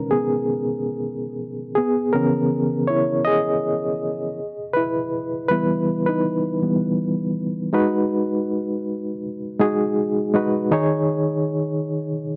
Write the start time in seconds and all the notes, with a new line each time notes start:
Already playing: B2 D#3 G#3 C#4 D#4 A#4 B4
0.11 B3 G#4
1.75 B3 G#4
2.13 C#3 E3 B3 C#4 A#4
2.87 E4 C#5
3.25 G#4 D#5
4.73 E4 B4
5.48 E3 G3 B3 E4 B4
6.06 D#4 B4
6.62 E3 G3 B3
7.73 G#3 D#4 F#4 B4
9.59 G#3 D#4 F#4 G#4
10.34 G#3 D#4 F#4 B4
10.71 D#3 D#4 G#4 C#5